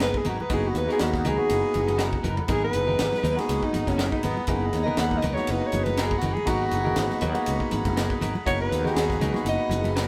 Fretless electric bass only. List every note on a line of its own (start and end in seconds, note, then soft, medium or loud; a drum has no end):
0.00 0.10 F#1 medium
0.25 0.37 G#1 medium
0.50 0.72 F#1 medium
0.75 0.87 D#2 medium
1.01 1.22 D#2 medium
1.25 1.37 C#2 medium
1.39 muted fretless electric bass stroke soft
1.50 1.62 F#1 medium
1.75 2.17 F#1 medium
2.24 2.36 F#1 medium
2.49 2.70 G#1 medium
2.74 2.95 F#1 medium
2.99 3.11 G#1 medium
3.24 3.35 D#2 medium
3.49 3.61 C#2 medium
3.74 3.85 G#1 medium
3.87 4.08 F#1 medium
4.24 4.35 G#1 medium
4.48 4.69 F#1 medium
4.73 4.85 D#2 medium
4.98 5.19 D#2 medium
5.23 5.35 C#2 medium
5.37 muted fretless electric bass stroke soft
5.48 5.60 F#1 medium
5.73 6.15 F#1 medium
6.22 6.34 F#1 medium
6.47 6.69 G#1 medium
6.72 6.93 F#1 medium
6.96 7.08 G#1 medium
7.22 7.34 D#2 medium
7.48 7.59 C#2 medium
7.72 7.84 G#1 medium
7.85 8.06 F#1 medium
8.22 8.34 G#1 medium
8.47 8.68 F#1 medium
8.71 8.83 D#2 medium
8.95 9.17 D#2 medium
9.20 9.32 C#2 medium
9.34 muted fretless electric bass stroke soft
9.45 9.57 F#1 medium
9.69 10.08 F#1 medium